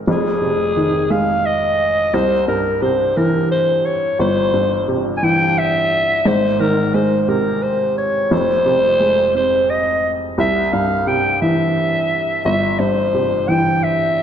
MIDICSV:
0, 0, Header, 1, 3, 480
1, 0, Start_track
1, 0, Tempo, 687285
1, 52, Time_signature, 6, 3, 24, 8
1, 9935, End_track
2, 0, Start_track
2, 0, Title_t, "Clarinet"
2, 0, Program_c, 0, 71
2, 61, Note_on_c, 0, 68, 88
2, 777, Note_on_c, 0, 77, 95
2, 788, Note_off_c, 0, 68, 0
2, 1017, Note_on_c, 0, 75, 97
2, 1028, Note_off_c, 0, 77, 0
2, 1496, Note_on_c, 0, 72, 89
2, 1507, Note_off_c, 0, 75, 0
2, 1727, Note_off_c, 0, 72, 0
2, 1731, Note_on_c, 0, 70, 83
2, 1972, Note_on_c, 0, 72, 82
2, 1982, Note_off_c, 0, 70, 0
2, 2213, Note_on_c, 0, 70, 80
2, 2223, Note_off_c, 0, 72, 0
2, 2450, Note_off_c, 0, 70, 0
2, 2454, Note_on_c, 0, 72, 89
2, 2691, Note_on_c, 0, 73, 76
2, 2702, Note_off_c, 0, 72, 0
2, 2928, Note_off_c, 0, 73, 0
2, 2933, Note_on_c, 0, 72, 97
2, 3436, Note_off_c, 0, 72, 0
2, 3611, Note_on_c, 0, 80, 79
2, 3656, Note_on_c, 0, 79, 102
2, 3667, Note_off_c, 0, 80, 0
2, 3897, Note_on_c, 0, 76, 104
2, 3908, Note_off_c, 0, 79, 0
2, 4378, Note_on_c, 0, 72, 93
2, 4388, Note_off_c, 0, 76, 0
2, 4609, Note_on_c, 0, 70, 90
2, 4619, Note_off_c, 0, 72, 0
2, 4851, Note_on_c, 0, 72, 85
2, 4862, Note_off_c, 0, 70, 0
2, 5040, Note_off_c, 0, 72, 0
2, 5040, Note_on_c, 0, 72, 67
2, 5090, Note_on_c, 0, 70, 86
2, 5101, Note_off_c, 0, 72, 0
2, 5326, Note_on_c, 0, 72, 85
2, 5337, Note_off_c, 0, 70, 0
2, 5567, Note_off_c, 0, 72, 0
2, 5571, Note_on_c, 0, 73, 81
2, 5815, Note_on_c, 0, 72, 100
2, 5825, Note_off_c, 0, 73, 0
2, 6534, Note_off_c, 0, 72, 0
2, 6538, Note_on_c, 0, 72, 89
2, 6776, Note_on_c, 0, 75, 87
2, 6786, Note_off_c, 0, 72, 0
2, 7066, Note_off_c, 0, 75, 0
2, 7259, Note_on_c, 0, 76, 100
2, 7491, Note_on_c, 0, 77, 91
2, 7502, Note_off_c, 0, 76, 0
2, 7736, Note_on_c, 0, 79, 84
2, 7746, Note_off_c, 0, 77, 0
2, 7971, Note_off_c, 0, 79, 0
2, 7975, Note_on_c, 0, 76, 89
2, 8667, Note_off_c, 0, 76, 0
2, 8697, Note_on_c, 0, 76, 95
2, 8937, Note_on_c, 0, 72, 86
2, 8948, Note_off_c, 0, 76, 0
2, 9418, Note_on_c, 0, 79, 87
2, 9428, Note_off_c, 0, 72, 0
2, 9662, Note_on_c, 0, 76, 102
2, 9673, Note_off_c, 0, 79, 0
2, 9935, Note_off_c, 0, 76, 0
2, 9935, End_track
3, 0, Start_track
3, 0, Title_t, "Upright piano"
3, 0, Program_c, 1, 0
3, 0, Control_c, 1, 64, 127
3, 52, Note_on_c, 1, 29, 62
3, 53, Note_on_c, 1, 41, 66
3, 61, Control_c, 1, 64, 0
3, 170, Control_c, 1, 64, 127
3, 292, Note_on_c, 1, 48, 52
3, 536, Note_on_c, 1, 51, 54
3, 771, Note_on_c, 1, 56, 59
3, 1224, Note_off_c, 1, 48, 0
3, 1463, Note_off_c, 1, 29, 0
3, 1464, Note_off_c, 1, 41, 0
3, 1466, Note_off_c, 1, 51, 0
3, 1469, Note_off_c, 1, 56, 0
3, 1492, Note_on_c, 1, 36, 63
3, 1501, Control_c, 1, 64, 0
3, 1629, Control_c, 1, 64, 127
3, 1731, Note_on_c, 1, 43, 52
3, 1971, Note_on_c, 1, 48, 60
3, 2214, Note_on_c, 1, 52, 62
3, 2663, Note_off_c, 1, 43, 0
3, 2903, Note_off_c, 1, 36, 0
3, 2903, Note_off_c, 1, 48, 0
3, 2928, Note_on_c, 1, 31, 72
3, 3144, Note_off_c, 1, 52, 0
3, 3168, Note_on_c, 1, 43, 54
3, 3408, Note_on_c, 1, 48, 59
3, 3649, Note_on_c, 1, 52, 63
3, 4102, Note_off_c, 1, 43, 0
3, 4342, Note_off_c, 1, 31, 0
3, 4342, Note_off_c, 1, 48, 0
3, 4349, Note_off_c, 1, 52, 0
3, 4368, Note_on_c, 1, 32, 60
3, 4368, Note_on_c, 1, 44, 66
3, 4379, Control_c, 1, 64, 0
3, 4502, Control_c, 1, 64, 127
3, 4610, Note_on_c, 1, 51, 61
3, 4846, Note_on_c, 1, 56, 62
3, 5087, Note_on_c, 1, 48, 66
3, 5543, Note_off_c, 1, 51, 0
3, 5781, Note_off_c, 1, 56, 0
3, 5782, Note_off_c, 1, 32, 0
3, 5782, Note_off_c, 1, 44, 0
3, 5788, Note_off_c, 1, 48, 0
3, 5805, Note_on_c, 1, 29, 64
3, 5806, Note_on_c, 1, 41, 65
3, 5822, Control_c, 1, 64, 0
3, 5923, Control_c, 1, 64, 127
3, 6047, Note_on_c, 1, 48, 60
3, 6286, Note_on_c, 1, 56, 54
3, 6529, Note_on_c, 1, 60, 62
3, 6982, Note_off_c, 1, 48, 0
3, 7221, Note_off_c, 1, 29, 0
3, 7222, Note_off_c, 1, 41, 0
3, 7222, Note_off_c, 1, 56, 0
3, 7229, Note_off_c, 1, 60, 0
3, 7249, Note_on_c, 1, 36, 64
3, 7261, Control_c, 1, 64, 0
3, 7396, Control_c, 1, 64, 127
3, 7494, Note_on_c, 1, 43, 57
3, 7732, Note_on_c, 1, 48, 55
3, 7974, Note_on_c, 1, 52, 61
3, 8426, Note_off_c, 1, 43, 0
3, 8664, Note_off_c, 1, 36, 0
3, 8666, Note_off_c, 1, 48, 0
3, 8697, Note_on_c, 1, 31, 68
3, 8907, Note_off_c, 1, 52, 0
3, 8936, Note_on_c, 1, 43, 57
3, 9180, Note_on_c, 1, 48, 55
3, 9417, Note_on_c, 1, 52, 60
3, 9868, Note_off_c, 1, 43, 0
3, 9935, Note_off_c, 1, 31, 0
3, 9935, Note_off_c, 1, 48, 0
3, 9935, Note_off_c, 1, 52, 0
3, 9935, End_track
0, 0, End_of_file